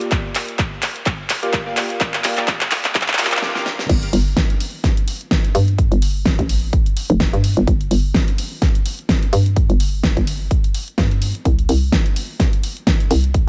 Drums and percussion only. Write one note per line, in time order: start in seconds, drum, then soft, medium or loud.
0.01 closed hi-hat medium
0.11 kick loud
0.11 clap medium
0.11 closed hi-hat medium
0.35 clap medium
0.35 open hi-hat loud
0.48 closed hi-hat medium
0.59 kick loud
0.59 clap medium
0.59 closed hi-hat medium
0.82 clap medium
0.82 open hi-hat loud
0.96 closed hi-hat soft
1.06 kick loud
1.06 clap medium
1.06 closed hi-hat medium
1.30 clap medium
1.30 open hi-hat loud
1.43 closed hi-hat soft
1.53 kick loud
1.53 clap medium
1.53 closed hi-hat medium
1.77 clap medium
1.77 open hi-hat loud
1.90 closed hi-hat medium
2.00 kick loud
2.00 clap medium
2.00 closed hi-hat medium
2.14 clap medium
2.24 clap loud
2.24 open hi-hat loud
2.37 clap medium
2.37 closed hi-hat soft
2.48 kick loud
2.48 clap medium
2.48 closed hi-hat medium
2.61 clap medium
2.61 closed hi-hat soft
2.71 clap loud
2.71 open hi-hat loud
2.85 clap medium
2.85 closed hi-hat soft
2.95 kick loud
2.95 clap loud
2.95 closed hi-hat medium
3.01 clap medium
3.08 clap medium
3.08 closed hi-hat soft
3.13 clap medium
3.18 clap loud
3.18 open hi-hat loud
3.25 clap loud
3.32 clap medium
3.32 closed hi-hat medium
3.37 clap medium
3.42 snare medium
3.55 snare medium
3.66 snare medium
3.79 snare medium
3.89 kick loud
3.89 closed hi-hat medium
3.89 crash loud
4.03 closed hi-hat medium
4.13 open hi-hat loud
4.37 kick loud
4.37 snare loud
4.37 closed hi-hat medium
4.50 closed hi-hat medium
4.60 open hi-hat medium
4.84 kick loud
4.84 snare medium
4.84 closed hi-hat medium
4.97 closed hi-hat medium
5.08 open hi-hat loud
5.21 closed hi-hat soft
5.31 kick loud
5.31 snare loud
5.31 closed hi-hat medium
5.44 closed hi-hat medium
5.55 open hi-hat medium
5.68 closed hi-hat soft
5.78 kick loud
5.78 closed hi-hat medium
5.92 closed hi-hat medium
6.02 open hi-hat loud
6.25 kick loud
6.25 snare loud
6.25 closed hi-hat medium
6.39 kick medium
6.39 closed hi-hat medium
6.49 open hi-hat loud
6.73 kick loud
6.73 closed hi-hat medium
6.86 closed hi-hat medium
6.97 open hi-hat loud
7.10 closed hi-hat soft
7.20 kick loud
7.20 snare loud
7.20 closed hi-hat medium
7.33 closed hi-hat medium
7.44 open hi-hat medium
7.57 closed hi-hat soft
7.67 kick loud
7.67 closed hi-hat medium
7.81 closed hi-hat soft
7.91 open hi-hat loud
8.14 kick loud
8.14 snare loud
8.14 closed hi-hat medium
8.28 closed hi-hat medium
8.38 open hi-hat loud
8.62 kick loud
8.62 snare medium
8.62 closed hi-hat medium
8.75 closed hi-hat medium
8.86 open hi-hat loud
8.99 closed hi-hat soft
9.09 kick loud
9.09 snare loud
9.09 closed hi-hat medium
9.22 closed hi-hat soft
9.33 open hi-hat loud
9.46 closed hi-hat soft
9.56 kick loud
9.56 closed hi-hat medium
9.70 closed hi-hat soft
9.80 open hi-hat loud
10.03 kick loud
10.03 snare loud
10.03 closed hi-hat medium
10.17 kick medium
10.17 closed hi-hat medium
10.27 open hi-hat loud
10.51 kick loud
10.51 closed hi-hat medium
10.64 closed hi-hat medium
10.74 open hi-hat loud
10.88 closed hi-hat soft
10.98 kick loud
10.98 snare loud
10.98 closed hi-hat medium
11.11 closed hi-hat soft
11.22 open hi-hat loud
11.35 closed hi-hat soft
11.45 kick loud
11.45 closed hi-hat medium
11.59 closed hi-hat soft
11.69 open hi-hat loud
11.92 kick loud
11.92 snare loud
11.92 closed hi-hat medium
12.06 closed hi-hat medium
12.16 open hi-hat loud
12.40 kick loud
12.40 snare medium
12.40 closed hi-hat medium
12.53 closed hi-hat medium
12.63 open hi-hat loud
12.77 closed hi-hat soft
12.87 kick loud
12.87 snare loud
12.87 closed hi-hat medium
13.00 closed hi-hat soft
13.11 open hi-hat loud
13.24 closed hi-hat soft
13.34 kick loud
13.34 closed hi-hat medium